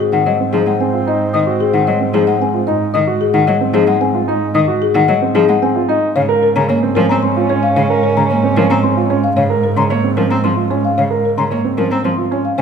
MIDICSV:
0, 0, Header, 1, 7, 480
1, 0, Start_track
1, 0, Tempo, 535714
1, 1195, Time_signature, 3, 2, 24, 8
1, 11306, End_track
2, 0, Start_track
2, 0, Title_t, "Flute"
2, 0, Program_c, 0, 73
2, 1196, Note_on_c, 0, 87, 56
2, 1250, Note_off_c, 0, 87, 0
2, 2632, Note_on_c, 0, 87, 56
2, 2685, Note_off_c, 0, 87, 0
2, 4076, Note_on_c, 0, 87, 62
2, 4129, Note_off_c, 0, 87, 0
2, 5515, Note_on_c, 0, 77, 67
2, 5569, Note_off_c, 0, 77, 0
2, 6954, Note_on_c, 0, 77, 68
2, 7008, Note_off_c, 0, 77, 0
2, 8397, Note_on_c, 0, 77, 59
2, 8451, Note_off_c, 0, 77, 0
2, 8753, Note_on_c, 0, 84, 64
2, 8807, Note_off_c, 0, 84, 0
2, 9833, Note_on_c, 0, 77, 54
2, 9887, Note_off_c, 0, 77, 0
2, 10193, Note_on_c, 0, 84, 55
2, 10247, Note_off_c, 0, 84, 0
2, 11274, Note_on_c, 0, 80, 64
2, 11306, Note_off_c, 0, 80, 0
2, 11306, End_track
3, 0, Start_track
3, 0, Title_t, "Marimba"
3, 0, Program_c, 1, 12
3, 2, Note_on_c, 1, 68, 59
3, 117, Note_on_c, 1, 78, 76
3, 154, Note_off_c, 1, 68, 0
3, 239, Note_on_c, 1, 75, 57
3, 272, Note_off_c, 1, 78, 0
3, 393, Note_off_c, 1, 75, 0
3, 473, Note_on_c, 1, 68, 63
3, 599, Note_on_c, 1, 78, 56
3, 631, Note_off_c, 1, 68, 0
3, 720, Note_on_c, 1, 80, 51
3, 753, Note_off_c, 1, 78, 0
3, 873, Note_off_c, 1, 80, 0
3, 966, Note_on_c, 1, 75, 56
3, 1115, Note_off_c, 1, 75, 0
3, 1201, Note_on_c, 1, 75, 60
3, 1354, Note_off_c, 1, 75, 0
3, 1438, Note_on_c, 1, 68, 60
3, 1556, Note_on_c, 1, 78, 72
3, 1592, Note_off_c, 1, 68, 0
3, 1676, Note_on_c, 1, 75, 56
3, 1712, Note_off_c, 1, 78, 0
3, 1832, Note_off_c, 1, 75, 0
3, 1918, Note_on_c, 1, 68, 70
3, 2036, Note_on_c, 1, 78, 65
3, 2073, Note_off_c, 1, 68, 0
3, 2164, Note_on_c, 1, 80, 62
3, 2192, Note_off_c, 1, 78, 0
3, 2315, Note_off_c, 1, 80, 0
3, 2393, Note_on_c, 1, 75, 62
3, 2551, Note_off_c, 1, 75, 0
3, 2633, Note_on_c, 1, 75, 70
3, 2791, Note_off_c, 1, 75, 0
3, 2875, Note_on_c, 1, 68, 64
3, 2993, Note_on_c, 1, 78, 80
3, 3031, Note_off_c, 1, 68, 0
3, 3111, Note_on_c, 1, 75, 60
3, 3151, Note_off_c, 1, 78, 0
3, 3270, Note_off_c, 1, 75, 0
3, 3350, Note_on_c, 1, 68, 80
3, 3474, Note_on_c, 1, 78, 64
3, 3510, Note_off_c, 1, 68, 0
3, 3594, Note_on_c, 1, 80, 63
3, 3631, Note_off_c, 1, 78, 0
3, 3751, Note_off_c, 1, 80, 0
3, 3842, Note_on_c, 1, 75, 62
3, 3994, Note_off_c, 1, 75, 0
3, 4076, Note_on_c, 1, 75, 80
3, 4232, Note_off_c, 1, 75, 0
3, 4317, Note_on_c, 1, 68, 66
3, 4439, Note_on_c, 1, 78, 83
3, 4472, Note_off_c, 1, 68, 0
3, 4558, Note_on_c, 1, 75, 62
3, 4593, Note_off_c, 1, 78, 0
3, 4713, Note_off_c, 1, 75, 0
3, 4795, Note_on_c, 1, 68, 78
3, 4918, Note_on_c, 1, 78, 69
3, 4952, Note_off_c, 1, 68, 0
3, 5039, Note_on_c, 1, 80, 64
3, 5072, Note_off_c, 1, 78, 0
3, 5193, Note_off_c, 1, 80, 0
3, 5280, Note_on_c, 1, 75, 66
3, 5433, Note_off_c, 1, 75, 0
3, 5517, Note_on_c, 1, 73, 80
3, 5672, Note_off_c, 1, 73, 0
3, 5759, Note_on_c, 1, 70, 67
3, 5879, Note_on_c, 1, 82, 82
3, 5913, Note_off_c, 1, 70, 0
3, 6000, Note_on_c, 1, 73, 68
3, 6033, Note_off_c, 1, 82, 0
3, 6153, Note_off_c, 1, 73, 0
3, 6230, Note_on_c, 1, 70, 79
3, 6355, Note_on_c, 1, 82, 74
3, 6390, Note_off_c, 1, 70, 0
3, 6473, Note_on_c, 1, 84, 68
3, 6512, Note_off_c, 1, 82, 0
3, 6631, Note_off_c, 1, 84, 0
3, 6715, Note_on_c, 1, 73, 70
3, 6836, Note_on_c, 1, 77, 73
3, 6872, Note_off_c, 1, 73, 0
3, 6957, Note_on_c, 1, 73, 81
3, 6992, Note_off_c, 1, 77, 0
3, 7112, Note_off_c, 1, 73, 0
3, 7197, Note_on_c, 1, 70, 70
3, 7320, Note_on_c, 1, 82, 86
3, 7352, Note_off_c, 1, 70, 0
3, 7438, Note_on_c, 1, 73, 68
3, 7473, Note_off_c, 1, 82, 0
3, 7593, Note_off_c, 1, 73, 0
3, 7679, Note_on_c, 1, 70, 71
3, 7797, Note_on_c, 1, 82, 69
3, 7833, Note_off_c, 1, 70, 0
3, 7913, Note_on_c, 1, 84, 65
3, 7952, Note_off_c, 1, 82, 0
3, 8071, Note_off_c, 1, 84, 0
3, 8154, Note_on_c, 1, 73, 59
3, 8276, Note_on_c, 1, 77, 68
3, 8311, Note_off_c, 1, 73, 0
3, 8394, Note_on_c, 1, 73, 69
3, 8432, Note_off_c, 1, 77, 0
3, 8551, Note_off_c, 1, 73, 0
3, 8633, Note_on_c, 1, 70, 60
3, 8758, Note_on_c, 1, 82, 79
3, 8791, Note_off_c, 1, 70, 0
3, 8875, Note_on_c, 1, 73, 60
3, 8913, Note_off_c, 1, 82, 0
3, 9031, Note_off_c, 1, 73, 0
3, 9113, Note_on_c, 1, 70, 64
3, 9233, Note_on_c, 1, 82, 65
3, 9271, Note_off_c, 1, 70, 0
3, 9353, Note_on_c, 1, 84, 61
3, 9391, Note_off_c, 1, 82, 0
3, 9511, Note_off_c, 1, 84, 0
3, 9594, Note_on_c, 1, 73, 64
3, 9718, Note_on_c, 1, 77, 60
3, 9751, Note_off_c, 1, 73, 0
3, 9837, Note_on_c, 1, 73, 61
3, 9872, Note_off_c, 1, 77, 0
3, 9992, Note_off_c, 1, 73, 0
3, 10082, Note_on_c, 1, 70, 56
3, 10196, Note_on_c, 1, 82, 76
3, 10234, Note_off_c, 1, 70, 0
3, 10320, Note_on_c, 1, 73, 56
3, 10352, Note_off_c, 1, 82, 0
3, 10473, Note_off_c, 1, 73, 0
3, 10556, Note_on_c, 1, 70, 67
3, 10677, Note_on_c, 1, 82, 56
3, 10712, Note_off_c, 1, 70, 0
3, 10798, Note_on_c, 1, 84, 54
3, 10832, Note_off_c, 1, 82, 0
3, 10953, Note_off_c, 1, 84, 0
3, 11039, Note_on_c, 1, 73, 59
3, 11154, Note_on_c, 1, 77, 56
3, 11193, Note_off_c, 1, 73, 0
3, 11271, Note_on_c, 1, 72, 68
3, 11306, Note_off_c, 1, 72, 0
3, 11306, Note_off_c, 1, 77, 0
3, 11306, End_track
4, 0, Start_track
4, 0, Title_t, "Grand piano"
4, 0, Program_c, 2, 0
4, 359, Note_on_c, 2, 60, 52
4, 480, Note_on_c, 2, 63, 55
4, 513, Note_off_c, 2, 60, 0
4, 633, Note_off_c, 2, 63, 0
4, 719, Note_on_c, 2, 60, 60
4, 835, Note_on_c, 2, 65, 59
4, 873, Note_off_c, 2, 60, 0
4, 958, Note_on_c, 2, 63, 72
4, 991, Note_off_c, 2, 65, 0
4, 1112, Note_off_c, 2, 63, 0
4, 1315, Note_on_c, 2, 66, 68
4, 1471, Note_off_c, 2, 66, 0
4, 1794, Note_on_c, 2, 60, 56
4, 1915, Note_on_c, 2, 63, 57
4, 1951, Note_off_c, 2, 60, 0
4, 2072, Note_off_c, 2, 63, 0
4, 2158, Note_on_c, 2, 60, 62
4, 2275, Note_on_c, 2, 65, 59
4, 2312, Note_off_c, 2, 60, 0
4, 2397, Note_on_c, 2, 63, 71
4, 2432, Note_off_c, 2, 65, 0
4, 2552, Note_off_c, 2, 63, 0
4, 2753, Note_on_c, 2, 66, 71
4, 2911, Note_off_c, 2, 66, 0
4, 3231, Note_on_c, 2, 60, 61
4, 3352, Note_on_c, 2, 63, 64
4, 3390, Note_off_c, 2, 60, 0
4, 3510, Note_off_c, 2, 63, 0
4, 3590, Note_on_c, 2, 60, 62
4, 3714, Note_on_c, 2, 65, 65
4, 3750, Note_off_c, 2, 60, 0
4, 3832, Note_on_c, 2, 63, 78
4, 3871, Note_off_c, 2, 65, 0
4, 3991, Note_off_c, 2, 63, 0
4, 4192, Note_on_c, 2, 66, 77
4, 4350, Note_off_c, 2, 66, 0
4, 4674, Note_on_c, 2, 60, 70
4, 4794, Note_on_c, 2, 63, 67
4, 4831, Note_off_c, 2, 60, 0
4, 4951, Note_off_c, 2, 63, 0
4, 5035, Note_on_c, 2, 60, 70
4, 5157, Note_on_c, 2, 65, 70
4, 5192, Note_off_c, 2, 60, 0
4, 5273, Note_on_c, 2, 63, 85
4, 5312, Note_off_c, 2, 65, 0
4, 5431, Note_off_c, 2, 63, 0
4, 5633, Note_on_c, 2, 70, 87
4, 5791, Note_off_c, 2, 70, 0
4, 6116, Note_on_c, 2, 60, 70
4, 6236, Note_on_c, 2, 61, 63
4, 6272, Note_off_c, 2, 60, 0
4, 6392, Note_off_c, 2, 61, 0
4, 6482, Note_on_c, 2, 60, 68
4, 6601, Note_on_c, 2, 65, 70
4, 6634, Note_off_c, 2, 60, 0
4, 6718, Note_on_c, 2, 61, 84
4, 6754, Note_off_c, 2, 65, 0
4, 6873, Note_off_c, 2, 61, 0
4, 7076, Note_on_c, 2, 70, 77
4, 7232, Note_off_c, 2, 70, 0
4, 7554, Note_on_c, 2, 60, 66
4, 7677, Note_on_c, 2, 61, 68
4, 7711, Note_off_c, 2, 60, 0
4, 7832, Note_off_c, 2, 61, 0
4, 7917, Note_on_c, 2, 60, 65
4, 8035, Note_on_c, 2, 65, 64
4, 8072, Note_off_c, 2, 60, 0
4, 8154, Note_on_c, 2, 61, 75
4, 8191, Note_off_c, 2, 65, 0
4, 8311, Note_off_c, 2, 61, 0
4, 8511, Note_on_c, 2, 70, 75
4, 8670, Note_off_c, 2, 70, 0
4, 8873, Note_on_c, 2, 73, 78
4, 8991, Note_on_c, 2, 60, 60
4, 9031, Note_off_c, 2, 73, 0
4, 9109, Note_on_c, 2, 61, 54
4, 9150, Note_off_c, 2, 60, 0
4, 9269, Note_off_c, 2, 61, 0
4, 9350, Note_on_c, 2, 60, 58
4, 9467, Note_on_c, 2, 65, 59
4, 9510, Note_off_c, 2, 60, 0
4, 9589, Note_on_c, 2, 61, 70
4, 9629, Note_off_c, 2, 65, 0
4, 9749, Note_off_c, 2, 61, 0
4, 9950, Note_on_c, 2, 70, 69
4, 10110, Note_off_c, 2, 70, 0
4, 10314, Note_on_c, 2, 73, 67
4, 10431, Note_on_c, 2, 60, 58
4, 10471, Note_off_c, 2, 73, 0
4, 10549, Note_on_c, 2, 61, 54
4, 10590, Note_off_c, 2, 60, 0
4, 10709, Note_off_c, 2, 61, 0
4, 10787, Note_on_c, 2, 60, 55
4, 10913, Note_on_c, 2, 65, 59
4, 10949, Note_off_c, 2, 60, 0
4, 11033, Note_on_c, 2, 61, 70
4, 11071, Note_off_c, 2, 65, 0
4, 11191, Note_off_c, 2, 61, 0
4, 11306, End_track
5, 0, Start_track
5, 0, Title_t, "Soprano saxophone"
5, 0, Program_c, 3, 64
5, 0, Note_on_c, 3, 60, 58
5, 2488, Note_off_c, 3, 60, 0
5, 5513, Note_on_c, 3, 61, 73
5, 8239, Note_off_c, 3, 61, 0
5, 11306, End_track
6, 0, Start_track
6, 0, Title_t, "Cello"
6, 0, Program_c, 4, 42
6, 114, Note_on_c, 4, 51, 66
6, 205, Note_off_c, 4, 51, 0
6, 232, Note_on_c, 4, 54, 51
6, 323, Note_off_c, 4, 54, 0
6, 476, Note_on_c, 4, 53, 73
6, 566, Note_off_c, 4, 53, 0
6, 593, Note_on_c, 4, 56, 58
6, 684, Note_off_c, 4, 56, 0
6, 1199, Note_on_c, 4, 51, 71
6, 1288, Note_off_c, 4, 51, 0
6, 1555, Note_on_c, 4, 51, 72
6, 1645, Note_off_c, 4, 51, 0
6, 1679, Note_on_c, 4, 54, 60
6, 1768, Note_off_c, 4, 54, 0
6, 1917, Note_on_c, 4, 53, 72
6, 2007, Note_off_c, 4, 53, 0
6, 2037, Note_on_c, 4, 56, 63
6, 2126, Note_off_c, 4, 56, 0
6, 2640, Note_on_c, 4, 51, 73
6, 2728, Note_off_c, 4, 51, 0
6, 2993, Note_on_c, 4, 51, 82
6, 3084, Note_off_c, 4, 51, 0
6, 3114, Note_on_c, 4, 54, 60
6, 3205, Note_off_c, 4, 54, 0
6, 3349, Note_on_c, 4, 53, 79
6, 3441, Note_off_c, 4, 53, 0
6, 3466, Note_on_c, 4, 56, 65
6, 3560, Note_off_c, 4, 56, 0
6, 4075, Note_on_c, 4, 51, 84
6, 4165, Note_off_c, 4, 51, 0
6, 4432, Note_on_c, 4, 51, 86
6, 4523, Note_off_c, 4, 51, 0
6, 4555, Note_on_c, 4, 54, 64
6, 4645, Note_off_c, 4, 54, 0
6, 4794, Note_on_c, 4, 53, 81
6, 4884, Note_off_c, 4, 53, 0
6, 4915, Note_on_c, 4, 56, 67
6, 5005, Note_off_c, 4, 56, 0
6, 5519, Note_on_c, 4, 49, 79
6, 5608, Note_off_c, 4, 49, 0
6, 5878, Note_on_c, 4, 49, 91
6, 5967, Note_off_c, 4, 49, 0
6, 5995, Note_on_c, 4, 58, 68
6, 6085, Note_off_c, 4, 58, 0
6, 6242, Note_on_c, 4, 53, 86
6, 6330, Note_off_c, 4, 53, 0
6, 6369, Note_on_c, 4, 60, 66
6, 6454, Note_off_c, 4, 60, 0
6, 6960, Note_on_c, 4, 49, 85
6, 7048, Note_off_c, 4, 49, 0
6, 7324, Note_on_c, 4, 49, 77
6, 7411, Note_off_c, 4, 49, 0
6, 7443, Note_on_c, 4, 58, 61
6, 7530, Note_off_c, 4, 58, 0
6, 7676, Note_on_c, 4, 53, 85
6, 7766, Note_off_c, 4, 53, 0
6, 7797, Note_on_c, 4, 60, 67
6, 7886, Note_off_c, 4, 60, 0
6, 8394, Note_on_c, 4, 49, 77
6, 8485, Note_off_c, 4, 49, 0
6, 8752, Note_on_c, 4, 49, 80
6, 8843, Note_off_c, 4, 49, 0
6, 8872, Note_on_c, 4, 58, 59
6, 8963, Note_off_c, 4, 58, 0
6, 9113, Note_on_c, 4, 53, 75
6, 9204, Note_off_c, 4, 53, 0
6, 9235, Note_on_c, 4, 60, 65
6, 9325, Note_off_c, 4, 60, 0
6, 9357, Note_on_c, 4, 53, 60
6, 9446, Note_off_c, 4, 53, 0
6, 9838, Note_on_c, 4, 49, 68
6, 9927, Note_off_c, 4, 49, 0
6, 10196, Note_on_c, 4, 49, 68
6, 10286, Note_off_c, 4, 49, 0
6, 10315, Note_on_c, 4, 58, 51
6, 10405, Note_off_c, 4, 58, 0
6, 10552, Note_on_c, 4, 53, 71
6, 10644, Note_off_c, 4, 53, 0
6, 10672, Note_on_c, 4, 60, 61
6, 10763, Note_off_c, 4, 60, 0
6, 10794, Note_on_c, 4, 53, 57
6, 10885, Note_off_c, 4, 53, 0
6, 11277, Note_on_c, 4, 49, 81
6, 11306, Note_off_c, 4, 49, 0
6, 11306, End_track
7, 0, Start_track
7, 0, Title_t, "Double bass"
7, 0, Program_c, 5, 43
7, 0, Note_on_c, 5, 44, 60
7, 5382, Note_off_c, 5, 44, 0
7, 5516, Note_on_c, 5, 44, 76
7, 11144, Note_off_c, 5, 44, 0
7, 11274, Note_on_c, 5, 44, 70
7, 11306, Note_off_c, 5, 44, 0
7, 11306, End_track
0, 0, End_of_file